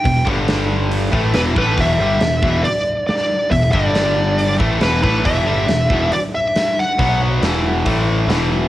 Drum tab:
HH |o-o-o-o-|o-o-o-o-|o-o-o-o-|o-o-o-o-|
SD |--o---o-|--o---o-|--o---o-|--o---oo|
BD |oo---o-o|o--o----|oo---o-o|o--o----|

HH |o-o-o-o-|
SD |--o---o-|
BD |o---o---|